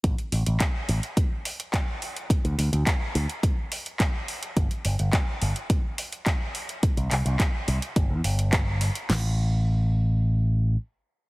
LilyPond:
<<
  \new Staff \with { instrumentName = "Picked electric bass" } { \clef bass \time 4/4 \key c \major \tempo 4 = 106 a,,16 r16 a,,16 a,,16 r8 a,,16 r2 r16 | r16 d,16 d,16 d,16 r8 d,16 r2 r16 | g,,16 r16 g,,16 g,,16 r8 g,,16 r2 r16 | r16 c,16 c,16 c,16 r8 c,16 r16 g,,16 e,16 g,,4~ g,,16 r16 |
a,,2. r4 | }
  \new DrumStaff \with { instrumentName = "Drums" } \drummode { \time 4/4 <hh bd>16 hh16 hho16 hh16 <hc hh bd>8 hho16 hh16 <hh bd>8 hho16 hh16 <hc hh bd>8 hho16 hh16 | <hh bd>16 hh16 hho16 hh16 <hc hh bd>8 hho16 hh16 <hh bd>8 hho16 hh16 <hc hh bd>8 hho16 hh16 | <hh bd>16 hh16 hho16 hh16 <hc hh bd>8 hho16 hh16 <hh bd>8 hho16 hh16 <hc hh bd>8 hho16 hh16 | <hh bd>16 hh16 <hc hho>16 hh16 <hc hh bd>8 hho16 hh16 <hh bd>8 hho16 hh16 <hc hh bd>8 hho16 hh16 |
<cymc sn>4 r4 r4 r4 | }
>>